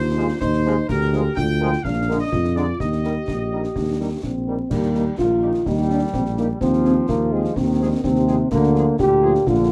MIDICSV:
0, 0, Header, 1, 7, 480
1, 0, Start_track
1, 0, Key_signature, -3, "major"
1, 0, Tempo, 476569
1, 896, Time_signature, 2, 2, 24, 8
1, 9789, End_track
2, 0, Start_track
2, 0, Title_t, "Trumpet section"
2, 0, Program_c, 0, 61
2, 0, Note_on_c, 0, 72, 90
2, 381, Note_off_c, 0, 72, 0
2, 411, Note_on_c, 0, 72, 90
2, 860, Note_off_c, 0, 72, 0
2, 892, Note_on_c, 0, 70, 90
2, 1341, Note_off_c, 0, 70, 0
2, 1372, Note_on_c, 0, 79, 101
2, 1821, Note_off_c, 0, 79, 0
2, 1852, Note_on_c, 0, 77, 82
2, 2211, Note_on_c, 0, 75, 87
2, 2215, Note_off_c, 0, 77, 0
2, 2549, Note_off_c, 0, 75, 0
2, 2574, Note_on_c, 0, 74, 82
2, 2814, Note_on_c, 0, 75, 85
2, 2816, Note_off_c, 0, 74, 0
2, 4216, Note_off_c, 0, 75, 0
2, 4980, Note_on_c, 0, 67, 48
2, 5066, Note_off_c, 0, 67, 0
2, 5466, Note_on_c, 0, 67, 52
2, 5551, Note_off_c, 0, 67, 0
2, 5940, Note_on_c, 0, 67, 50
2, 6026, Note_off_c, 0, 67, 0
2, 6430, Note_on_c, 0, 67, 51
2, 6514, Note_off_c, 0, 67, 0
2, 6902, Note_on_c, 0, 68, 52
2, 6988, Note_off_c, 0, 68, 0
2, 7394, Note_on_c, 0, 68, 54
2, 7477, Note_off_c, 0, 68, 0
2, 7862, Note_on_c, 0, 68, 57
2, 7947, Note_off_c, 0, 68, 0
2, 8337, Note_on_c, 0, 68, 61
2, 8424, Note_off_c, 0, 68, 0
2, 8814, Note_on_c, 0, 68, 62
2, 8902, Note_off_c, 0, 68, 0
2, 9291, Note_on_c, 0, 68, 66
2, 9379, Note_off_c, 0, 68, 0
2, 9789, End_track
3, 0, Start_track
3, 0, Title_t, "Euphonium"
3, 0, Program_c, 1, 58
3, 0, Note_on_c, 1, 65, 67
3, 411, Note_off_c, 1, 65, 0
3, 417, Note_on_c, 1, 63, 75
3, 902, Note_on_c, 1, 67, 83
3, 917, Note_off_c, 1, 63, 0
3, 1382, Note_on_c, 1, 65, 68
3, 1397, Note_off_c, 1, 67, 0
3, 1848, Note_off_c, 1, 65, 0
3, 1854, Note_on_c, 1, 62, 69
3, 2302, Note_off_c, 1, 62, 0
3, 2332, Note_on_c, 1, 65, 64
3, 2819, Note_on_c, 1, 67, 65
3, 2834, Note_off_c, 1, 65, 0
3, 4259, Note_off_c, 1, 67, 0
3, 4270, Note_on_c, 1, 60, 74
3, 4741, Note_on_c, 1, 58, 69
3, 4756, Note_off_c, 1, 60, 0
3, 5077, Note_off_c, 1, 58, 0
3, 5218, Note_on_c, 1, 65, 93
3, 5704, Note_on_c, 1, 63, 78
3, 5719, Note_off_c, 1, 65, 0
3, 5935, Note_off_c, 1, 63, 0
3, 5941, Note_on_c, 1, 62, 85
3, 6048, Note_off_c, 1, 62, 0
3, 6176, Note_on_c, 1, 60, 80
3, 6285, Note_off_c, 1, 60, 0
3, 6420, Note_on_c, 1, 58, 68
3, 6528, Note_off_c, 1, 58, 0
3, 6653, Note_on_c, 1, 60, 83
3, 7102, Note_off_c, 1, 60, 0
3, 7136, Note_on_c, 1, 58, 83
3, 7375, Note_on_c, 1, 56, 78
3, 7390, Note_off_c, 1, 58, 0
3, 7622, Note_on_c, 1, 60, 94
3, 7637, Note_off_c, 1, 56, 0
3, 8089, Note_off_c, 1, 60, 0
3, 8095, Note_on_c, 1, 60, 93
3, 8542, Note_off_c, 1, 60, 0
3, 8576, Note_on_c, 1, 58, 96
3, 9023, Note_off_c, 1, 58, 0
3, 9062, Note_on_c, 1, 67, 117
3, 9542, Note_on_c, 1, 65, 99
3, 9557, Note_off_c, 1, 67, 0
3, 9789, Note_off_c, 1, 65, 0
3, 9789, End_track
4, 0, Start_track
4, 0, Title_t, "French horn section"
4, 0, Program_c, 2, 60
4, 181, Note_on_c, 2, 56, 67
4, 182, Note_on_c, 2, 65, 67
4, 185, Note_on_c, 2, 68, 63
4, 267, Note_off_c, 2, 56, 0
4, 267, Note_off_c, 2, 65, 0
4, 269, Note_off_c, 2, 68, 0
4, 661, Note_on_c, 2, 56, 62
4, 661, Note_on_c, 2, 65, 61
4, 663, Note_on_c, 2, 68, 62
4, 746, Note_off_c, 2, 65, 0
4, 747, Note_off_c, 2, 56, 0
4, 748, Note_off_c, 2, 68, 0
4, 1140, Note_on_c, 2, 65, 64
4, 1141, Note_on_c, 2, 70, 68
4, 1142, Note_on_c, 2, 56, 63
4, 1225, Note_off_c, 2, 65, 0
4, 1226, Note_off_c, 2, 70, 0
4, 1227, Note_off_c, 2, 56, 0
4, 1620, Note_on_c, 2, 56, 65
4, 1621, Note_on_c, 2, 65, 59
4, 1622, Note_on_c, 2, 70, 64
4, 1705, Note_off_c, 2, 56, 0
4, 1707, Note_off_c, 2, 65, 0
4, 1708, Note_off_c, 2, 70, 0
4, 2095, Note_on_c, 2, 70, 63
4, 2097, Note_on_c, 2, 62, 57
4, 2099, Note_on_c, 2, 56, 62
4, 2182, Note_off_c, 2, 70, 0
4, 2184, Note_off_c, 2, 62, 0
4, 2185, Note_off_c, 2, 56, 0
4, 2582, Note_on_c, 2, 56, 53
4, 2582, Note_on_c, 2, 70, 52
4, 2583, Note_on_c, 2, 62, 53
4, 2667, Note_off_c, 2, 70, 0
4, 2668, Note_off_c, 2, 56, 0
4, 2668, Note_off_c, 2, 62, 0
4, 3063, Note_on_c, 2, 70, 51
4, 3065, Note_on_c, 2, 55, 52
4, 3065, Note_on_c, 2, 63, 51
4, 3148, Note_off_c, 2, 70, 0
4, 3150, Note_off_c, 2, 55, 0
4, 3150, Note_off_c, 2, 63, 0
4, 3543, Note_on_c, 2, 70, 49
4, 3544, Note_on_c, 2, 55, 50
4, 3547, Note_on_c, 2, 63, 48
4, 3628, Note_off_c, 2, 70, 0
4, 3629, Note_off_c, 2, 55, 0
4, 3631, Note_off_c, 2, 63, 0
4, 4023, Note_on_c, 2, 55, 49
4, 4026, Note_on_c, 2, 63, 49
4, 4028, Note_on_c, 2, 70, 46
4, 4109, Note_off_c, 2, 55, 0
4, 4111, Note_off_c, 2, 63, 0
4, 4112, Note_off_c, 2, 70, 0
4, 4506, Note_on_c, 2, 55, 45
4, 4507, Note_on_c, 2, 63, 45
4, 4509, Note_on_c, 2, 70, 44
4, 4590, Note_off_c, 2, 55, 0
4, 4592, Note_off_c, 2, 63, 0
4, 4593, Note_off_c, 2, 70, 0
4, 4982, Note_on_c, 2, 63, 55
4, 4984, Note_on_c, 2, 55, 53
4, 4984, Note_on_c, 2, 58, 54
4, 5068, Note_off_c, 2, 63, 0
4, 5069, Note_off_c, 2, 55, 0
4, 5069, Note_off_c, 2, 58, 0
4, 5460, Note_on_c, 2, 55, 55
4, 5462, Note_on_c, 2, 58, 49
4, 5462, Note_on_c, 2, 63, 54
4, 5546, Note_off_c, 2, 55, 0
4, 5548, Note_off_c, 2, 58, 0
4, 5548, Note_off_c, 2, 63, 0
4, 5942, Note_on_c, 2, 58, 55
4, 5942, Note_on_c, 2, 63, 58
4, 5943, Note_on_c, 2, 55, 54
4, 6027, Note_off_c, 2, 58, 0
4, 6027, Note_off_c, 2, 63, 0
4, 6028, Note_off_c, 2, 55, 0
4, 6416, Note_on_c, 2, 63, 54
4, 6417, Note_on_c, 2, 55, 57
4, 6421, Note_on_c, 2, 58, 50
4, 6503, Note_off_c, 2, 63, 0
4, 6504, Note_off_c, 2, 55, 0
4, 6507, Note_off_c, 2, 58, 0
4, 6895, Note_on_c, 2, 60, 58
4, 6897, Note_on_c, 2, 56, 60
4, 6898, Note_on_c, 2, 53, 60
4, 6982, Note_off_c, 2, 60, 0
4, 6983, Note_off_c, 2, 56, 0
4, 6984, Note_off_c, 2, 53, 0
4, 7370, Note_on_c, 2, 56, 57
4, 7371, Note_on_c, 2, 53, 57
4, 7372, Note_on_c, 2, 60, 58
4, 7458, Note_off_c, 2, 56, 0
4, 7459, Note_off_c, 2, 53, 0
4, 7459, Note_off_c, 2, 60, 0
4, 7849, Note_on_c, 2, 60, 62
4, 7850, Note_on_c, 2, 56, 63
4, 7852, Note_on_c, 2, 53, 59
4, 7937, Note_off_c, 2, 60, 0
4, 7938, Note_off_c, 2, 56, 0
4, 7939, Note_off_c, 2, 53, 0
4, 8335, Note_on_c, 2, 53, 59
4, 8335, Note_on_c, 2, 60, 65
4, 8340, Note_on_c, 2, 56, 63
4, 8422, Note_off_c, 2, 53, 0
4, 8422, Note_off_c, 2, 60, 0
4, 8426, Note_off_c, 2, 56, 0
4, 8818, Note_on_c, 2, 53, 68
4, 8818, Note_on_c, 2, 58, 67
4, 8818, Note_on_c, 2, 65, 68
4, 8904, Note_off_c, 2, 58, 0
4, 8904, Note_off_c, 2, 65, 0
4, 8905, Note_off_c, 2, 53, 0
4, 9296, Note_on_c, 2, 53, 67
4, 9297, Note_on_c, 2, 58, 70
4, 9297, Note_on_c, 2, 65, 67
4, 9383, Note_off_c, 2, 53, 0
4, 9383, Note_off_c, 2, 58, 0
4, 9383, Note_off_c, 2, 65, 0
4, 9789, End_track
5, 0, Start_track
5, 0, Title_t, "Trombone section"
5, 0, Program_c, 3, 61
5, 168, Note_on_c, 3, 53, 66
5, 172, Note_on_c, 3, 56, 68
5, 254, Note_off_c, 3, 53, 0
5, 257, Note_off_c, 3, 56, 0
5, 659, Note_on_c, 3, 53, 76
5, 663, Note_on_c, 3, 56, 76
5, 742, Note_off_c, 3, 53, 0
5, 744, Note_off_c, 3, 56, 0
5, 1135, Note_on_c, 3, 56, 67
5, 1140, Note_on_c, 3, 53, 72
5, 1219, Note_off_c, 3, 56, 0
5, 1222, Note_off_c, 3, 53, 0
5, 1624, Note_on_c, 3, 56, 76
5, 1626, Note_on_c, 3, 53, 71
5, 1705, Note_off_c, 3, 56, 0
5, 1706, Note_off_c, 3, 53, 0
5, 2108, Note_on_c, 3, 50, 66
5, 2108, Note_on_c, 3, 56, 65
5, 2188, Note_off_c, 3, 50, 0
5, 2188, Note_off_c, 3, 56, 0
5, 2573, Note_on_c, 3, 56, 67
5, 2574, Note_on_c, 3, 50, 61
5, 2659, Note_off_c, 3, 50, 0
5, 2659, Note_off_c, 3, 56, 0
5, 3057, Note_on_c, 3, 51, 57
5, 3059, Note_on_c, 3, 55, 53
5, 3141, Note_off_c, 3, 51, 0
5, 3142, Note_off_c, 3, 55, 0
5, 3540, Note_on_c, 3, 51, 59
5, 3542, Note_on_c, 3, 55, 54
5, 3623, Note_off_c, 3, 51, 0
5, 3625, Note_off_c, 3, 55, 0
5, 4020, Note_on_c, 3, 55, 52
5, 4022, Note_on_c, 3, 51, 52
5, 4103, Note_off_c, 3, 55, 0
5, 4104, Note_off_c, 3, 51, 0
5, 4502, Note_on_c, 3, 51, 51
5, 4504, Note_on_c, 3, 55, 55
5, 4585, Note_off_c, 3, 51, 0
5, 4586, Note_off_c, 3, 55, 0
5, 4736, Note_on_c, 3, 55, 72
5, 5183, Note_off_c, 3, 55, 0
5, 5218, Note_on_c, 3, 51, 61
5, 5664, Note_off_c, 3, 51, 0
5, 5701, Note_on_c, 3, 55, 82
5, 6619, Note_off_c, 3, 55, 0
5, 6658, Note_on_c, 3, 53, 82
5, 7577, Note_off_c, 3, 53, 0
5, 7615, Note_on_c, 3, 51, 74
5, 8095, Note_on_c, 3, 48, 73
5, 8096, Note_off_c, 3, 51, 0
5, 8569, Note_on_c, 3, 50, 81
5, 8576, Note_off_c, 3, 48, 0
5, 9019, Note_off_c, 3, 50, 0
5, 9049, Note_on_c, 3, 46, 76
5, 9500, Note_off_c, 3, 46, 0
5, 9534, Note_on_c, 3, 50, 86
5, 9789, Note_off_c, 3, 50, 0
5, 9789, End_track
6, 0, Start_track
6, 0, Title_t, "Tuba"
6, 0, Program_c, 4, 58
6, 0, Note_on_c, 4, 39, 73
6, 337, Note_off_c, 4, 39, 0
6, 420, Note_on_c, 4, 39, 75
6, 818, Note_off_c, 4, 39, 0
6, 901, Note_on_c, 4, 38, 82
6, 1299, Note_off_c, 4, 38, 0
6, 1378, Note_on_c, 4, 38, 81
6, 1778, Note_off_c, 4, 38, 0
6, 1854, Note_on_c, 4, 34, 73
6, 2256, Note_off_c, 4, 34, 0
6, 2344, Note_on_c, 4, 41, 67
6, 2741, Note_off_c, 4, 41, 0
6, 2826, Note_on_c, 4, 39, 70
6, 3222, Note_off_c, 4, 39, 0
6, 3310, Note_on_c, 4, 34, 58
6, 3704, Note_off_c, 4, 34, 0
6, 3783, Note_on_c, 4, 39, 61
6, 4181, Note_off_c, 4, 39, 0
6, 4265, Note_on_c, 4, 34, 54
6, 4662, Note_off_c, 4, 34, 0
6, 4745, Note_on_c, 4, 39, 69
6, 5141, Note_off_c, 4, 39, 0
6, 5225, Note_on_c, 4, 34, 64
6, 5621, Note_off_c, 4, 34, 0
6, 5702, Note_on_c, 4, 39, 73
6, 6100, Note_off_c, 4, 39, 0
6, 6185, Note_on_c, 4, 34, 63
6, 6581, Note_off_c, 4, 34, 0
6, 6662, Note_on_c, 4, 39, 72
6, 7060, Note_off_c, 4, 39, 0
6, 7139, Note_on_c, 4, 39, 70
6, 7538, Note_off_c, 4, 39, 0
6, 7619, Note_on_c, 4, 39, 79
6, 8018, Note_off_c, 4, 39, 0
6, 8098, Note_on_c, 4, 39, 77
6, 8498, Note_off_c, 4, 39, 0
6, 8581, Note_on_c, 4, 38, 84
6, 8979, Note_off_c, 4, 38, 0
6, 9061, Note_on_c, 4, 38, 75
6, 9459, Note_off_c, 4, 38, 0
6, 9534, Note_on_c, 4, 34, 89
6, 9789, Note_off_c, 4, 34, 0
6, 9789, End_track
7, 0, Start_track
7, 0, Title_t, "Drums"
7, 416, Note_on_c, 9, 35, 80
7, 416, Note_on_c, 9, 38, 80
7, 517, Note_off_c, 9, 35, 0
7, 517, Note_off_c, 9, 38, 0
7, 535, Note_on_c, 9, 38, 50
7, 635, Note_off_c, 9, 38, 0
7, 656, Note_on_c, 9, 38, 51
7, 757, Note_off_c, 9, 38, 0
7, 898, Note_on_c, 9, 35, 80
7, 898, Note_on_c, 9, 38, 71
7, 898, Note_on_c, 9, 49, 31
7, 998, Note_off_c, 9, 35, 0
7, 998, Note_off_c, 9, 38, 0
7, 998, Note_off_c, 9, 49, 0
7, 1019, Note_on_c, 9, 38, 47
7, 1120, Note_off_c, 9, 38, 0
7, 1139, Note_on_c, 9, 38, 51
7, 1239, Note_off_c, 9, 38, 0
7, 1380, Note_on_c, 9, 35, 73
7, 1380, Note_on_c, 9, 38, 76
7, 1481, Note_off_c, 9, 35, 0
7, 1481, Note_off_c, 9, 38, 0
7, 1742, Note_on_c, 9, 38, 55
7, 1842, Note_off_c, 9, 38, 0
7, 1860, Note_on_c, 9, 35, 79
7, 1860, Note_on_c, 9, 38, 62
7, 1960, Note_off_c, 9, 35, 0
7, 1960, Note_off_c, 9, 38, 0
7, 2340, Note_on_c, 9, 35, 79
7, 2340, Note_on_c, 9, 38, 69
7, 2441, Note_off_c, 9, 35, 0
7, 2441, Note_off_c, 9, 38, 0
7, 2460, Note_on_c, 9, 38, 51
7, 2561, Note_off_c, 9, 38, 0
7, 2582, Note_on_c, 9, 38, 49
7, 2682, Note_off_c, 9, 38, 0
7, 2821, Note_on_c, 9, 35, 76
7, 2821, Note_on_c, 9, 38, 68
7, 2922, Note_off_c, 9, 35, 0
7, 2922, Note_off_c, 9, 38, 0
7, 2944, Note_on_c, 9, 38, 45
7, 3044, Note_off_c, 9, 38, 0
7, 3062, Note_on_c, 9, 38, 43
7, 3163, Note_off_c, 9, 38, 0
7, 3302, Note_on_c, 9, 35, 72
7, 3302, Note_on_c, 9, 38, 75
7, 3403, Note_off_c, 9, 35, 0
7, 3403, Note_off_c, 9, 38, 0
7, 3664, Note_on_c, 9, 38, 48
7, 3765, Note_off_c, 9, 38, 0
7, 3782, Note_on_c, 9, 35, 76
7, 3782, Note_on_c, 9, 38, 59
7, 3883, Note_off_c, 9, 35, 0
7, 3883, Note_off_c, 9, 38, 0
7, 4263, Note_on_c, 9, 35, 67
7, 4263, Note_on_c, 9, 38, 73
7, 4364, Note_off_c, 9, 35, 0
7, 4364, Note_off_c, 9, 38, 0
7, 4743, Note_on_c, 9, 35, 81
7, 4743, Note_on_c, 9, 38, 69
7, 4743, Note_on_c, 9, 49, 45
7, 4843, Note_off_c, 9, 35, 0
7, 4843, Note_off_c, 9, 38, 0
7, 4843, Note_off_c, 9, 49, 0
7, 4862, Note_on_c, 9, 38, 48
7, 4963, Note_off_c, 9, 38, 0
7, 4983, Note_on_c, 9, 38, 46
7, 5084, Note_off_c, 9, 38, 0
7, 5223, Note_on_c, 9, 35, 73
7, 5223, Note_on_c, 9, 38, 74
7, 5324, Note_off_c, 9, 35, 0
7, 5324, Note_off_c, 9, 38, 0
7, 5581, Note_on_c, 9, 38, 48
7, 5682, Note_off_c, 9, 38, 0
7, 5703, Note_on_c, 9, 35, 75
7, 5703, Note_on_c, 9, 38, 61
7, 5803, Note_off_c, 9, 35, 0
7, 5803, Note_off_c, 9, 38, 0
7, 6179, Note_on_c, 9, 35, 76
7, 6179, Note_on_c, 9, 38, 74
7, 6280, Note_off_c, 9, 35, 0
7, 6280, Note_off_c, 9, 38, 0
7, 6301, Note_on_c, 9, 38, 49
7, 6402, Note_off_c, 9, 38, 0
7, 6419, Note_on_c, 9, 38, 52
7, 6519, Note_off_c, 9, 38, 0
7, 6659, Note_on_c, 9, 35, 81
7, 6659, Note_on_c, 9, 38, 75
7, 6759, Note_off_c, 9, 35, 0
7, 6759, Note_off_c, 9, 38, 0
7, 6779, Note_on_c, 9, 38, 45
7, 6880, Note_off_c, 9, 38, 0
7, 6898, Note_on_c, 9, 38, 47
7, 6999, Note_off_c, 9, 38, 0
7, 7140, Note_on_c, 9, 35, 75
7, 7140, Note_on_c, 9, 38, 74
7, 7240, Note_off_c, 9, 35, 0
7, 7240, Note_off_c, 9, 38, 0
7, 7498, Note_on_c, 9, 38, 51
7, 7599, Note_off_c, 9, 38, 0
7, 7616, Note_on_c, 9, 35, 81
7, 7616, Note_on_c, 9, 38, 67
7, 7717, Note_off_c, 9, 35, 0
7, 7717, Note_off_c, 9, 38, 0
7, 8096, Note_on_c, 9, 35, 75
7, 8096, Note_on_c, 9, 38, 77
7, 8197, Note_off_c, 9, 35, 0
7, 8197, Note_off_c, 9, 38, 0
7, 8215, Note_on_c, 9, 38, 55
7, 8316, Note_off_c, 9, 38, 0
7, 8338, Note_on_c, 9, 38, 48
7, 8439, Note_off_c, 9, 38, 0
7, 8577, Note_on_c, 9, 35, 85
7, 8577, Note_on_c, 9, 38, 75
7, 8577, Note_on_c, 9, 49, 30
7, 8677, Note_off_c, 9, 35, 0
7, 8677, Note_off_c, 9, 38, 0
7, 8677, Note_off_c, 9, 49, 0
7, 8699, Note_on_c, 9, 38, 50
7, 8799, Note_off_c, 9, 38, 0
7, 8818, Note_on_c, 9, 38, 49
7, 8918, Note_off_c, 9, 38, 0
7, 9057, Note_on_c, 9, 35, 77
7, 9057, Note_on_c, 9, 38, 79
7, 9158, Note_off_c, 9, 35, 0
7, 9158, Note_off_c, 9, 38, 0
7, 9416, Note_on_c, 9, 38, 54
7, 9517, Note_off_c, 9, 38, 0
7, 9534, Note_on_c, 9, 35, 84
7, 9534, Note_on_c, 9, 38, 64
7, 9634, Note_off_c, 9, 35, 0
7, 9634, Note_off_c, 9, 38, 0
7, 9789, End_track
0, 0, End_of_file